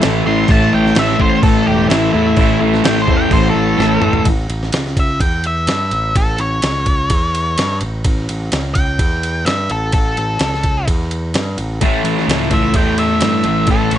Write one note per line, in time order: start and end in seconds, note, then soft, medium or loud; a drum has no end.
0.00 0.21 A1 medium
0.00 0.48 A2 medium
0.00 0.28 E3 loud
0.00 0.45 E4 medium
0.00 0.46 A4 medium
0.00 0.47 E5 medium
0.00 snare loud
0.00 crash medium
0.05 0.26 A3 loud
0.26 0.44 A1 medium
0.26 0.50 E3 medium
0.26 0.51 A3 medium
0.26 0.49 C6 loud
0.47 0.67 A1 medium
0.47 0.95 A2 loud
0.47 0.76 E3 loud
0.47 4.21 E4 medium
0.47 4.22 A4 medium
0.47 4.22 C#5 medium
0.47 kick loud
0.47 crash medium
0.51 0.73 A3 loud
0.51 0.73 A5 loud
0.73 0.91 A1 medium
0.73 0.97 E3 medium
0.73 0.98 A3 medium
0.73 0.97 G5 loud
0.86 snare soft
0.95 1.15 A1 medium
0.95 1.88 A2 medium
0.95 1.22 E3 medium
0.95 1.18 A3 medium
0.95 1.21 E5 medium
0.95 snare loud
0.95 crash medium
1.08 snare soft
1.18 1.38 A1 loud
1.18 1.90 E3 medium
1.18 1.92 A3 medium
1.18 1.43 C5 loud
1.18 kick medium
1.43 1.61 A1 loud
1.43 1.66 A4 loud
1.43 kick loud
1.43 crash medium
1.66 1.85 E1 medium
1.66 1.89 G4 medium
1.89 2.09 A1 loud
1.89 2.36 A2 loud
1.89 2.15 E3 loud
1.89 2.13 A3 loud
1.89 2.11 E4 loud
1.89 snare loud
1.89 crash medium
2.13 2.32 E2 loud
2.13 2.37 E3 medium
2.13 2.38 A3 medium
2.13 2.59 E4 loud
2.37 2.55 A1 loud
2.37 2.83 A2 loud
2.37 2.63 E3 loud
2.37 2.60 A3 loud
2.37 kick loud
2.37 crash medium
2.61 2.79 A1 medium
2.61 2.85 E3 medium
2.61 2.86 A3 medium
2.74 snare soft
2.84 3.02 A1 medium
2.84 3.32 A2 medium
2.84 3.09 E3 medium
2.84 3.06 A3 medium
2.84 3.00 G5 loud
2.84 snare loud
2.84 crash medium
2.98 3.16 C5 loud
2.98 snare soft
3.07 3.26 E2 medium
3.07 3.77 E3 medium
3.07 3.79 A3 medium
3.07 kick medium
3.17 3.32 G5 loud
3.30 3.49 A1 loud
3.30 3.47 C5 loud
3.30 kick loud
3.30 crash medium
3.50 4.25 A4 loud
3.55 3.73 A1 medium
3.77 3.97 A1 medium
3.77 4.24 A2 loud
3.77 4.03 E3 loud
3.77 4.00 A3 loud
3.77 snare medium
4.01 4.20 A1 medium
4.01 4.26 E3 medium
4.01 4.24 A3 medium
4.01 mid tom medium
4.13 floor tom medium
4.25 4.48 A1 medium
4.25 kick loud
4.25 ride medium
4.49 4.72 A1 medium
4.49 ride medium
4.63 snare soft
4.72 5.19 C#2 medium
4.72 snare loud
4.72 ride medium
4.86 snare soft
4.97 5.21 E5 loud
4.97 kick medium
4.97 ride medium
5.20 5.66 E2 medium
5.20 5.44 G5 medium
5.20 kick loud
5.20 ride medium
5.44 6.15 E5 medium
5.44 ride medium
5.67 5.90 G2 medium
5.67 snare loud
5.67 ride medium
5.91 6.14 A1 medium
5.91 ride medium
6.15 6.38 A1 medium
6.15 6.39 A4 loud
6.15 kick loud
6.15 ride medium
6.38 6.62 A1 medium
6.38 7.78 C#5 medium
6.38 ride medium
6.62 7.08 C#2 medium
6.62 snare loud
6.62 ride medium
6.86 kick medium
6.86 ride medium
7.10 7.56 E2 medium
7.10 kick loud
7.10 ride medium
7.35 ride medium
7.58 7.81 G2 medium
7.58 snare loud
7.58 ride loud
7.81 8.04 A1 medium
7.81 ride medium
8.04 8.27 A1 medium
8.04 kick loud
8.04 ride medium
8.29 8.52 A1 medium
8.29 ride medium
8.52 8.98 C#2 medium
8.52 snare loud
8.52 ride medium
8.75 9.44 G5 loud
8.75 kick medium
8.75 ride medium
8.99 9.44 E2 medium
8.99 kick loud
8.99 ride medium
9.23 ride medium
9.45 9.69 G2 medium
9.45 9.69 E5 medium
9.45 snare loud
9.45 ride medium
9.70 9.93 A1 medium
9.70 9.93 A4 medium
9.70 ride medium
9.92 10.16 A1 loud
9.92 10.85 A4 loud
9.92 kick loud
9.92 ride medium
10.17 10.39 A1 medium
10.17 ride medium
10.39 10.85 C#2 medium
10.39 snare loud
10.39 ride medium
10.54 snare soft
10.63 kick medium
10.63 ride medium
10.88 11.33 E2 medium
10.88 kick loud
10.88 ride medium
11.11 ride medium
11.34 11.57 G2 medium
11.34 snare loud
11.34 ride medium
11.57 11.80 A1 medium
11.57 ride medium
11.80 12.03 A1 medium
11.80 12.26 A2 medium
11.80 12.28 E3 medium
11.80 13.98 E4 medium
11.80 13.98 A4 medium
11.80 13.98 C#5 medium
11.80 kick loud
11.80 ride loud
11.84 12.29 A3 loud
12.04 12.27 A1 medium
12.04 ride medium
12.19 snare soft
12.27 12.73 C#2 medium
12.27 12.75 A2 medium
12.27 12.53 E3 medium
12.27 12.50 A3 medium
12.27 ride loud
12.31 snare loud
12.42 snare soft
12.50 12.76 E3 medium
12.50 12.77 A3 medium
12.50 12.75 E5 medium
12.50 kick medium
12.50 ride medium
12.74 13.19 E2 medium
12.74 13.21 A2 medium
12.74 13.23 E3 medium
12.74 13.24 A3 medium
12.74 12.99 G5 medium
12.74 kick loud
12.74 ride medium
12.98 13.67 E5 medium
12.98 ride medium
13.21 13.43 G2 medium
13.21 13.68 A2 medium
13.21 13.47 E3 medium
13.21 13.44 A3 medium
13.21 snare loud
13.21 ride loud
13.44 13.67 A1 medium
13.44 13.71 A3 medium
13.44 ride medium
13.48 13.70 E3 medium
13.67 13.90 A1 medium
13.67 13.98 A2 medium
13.67 13.98 E3 medium
13.67 13.92 A4 loud
13.67 kick loud
13.67 ride medium
13.71 13.98 A3 medium
13.91 13.98 A1 medium
13.91 ride medium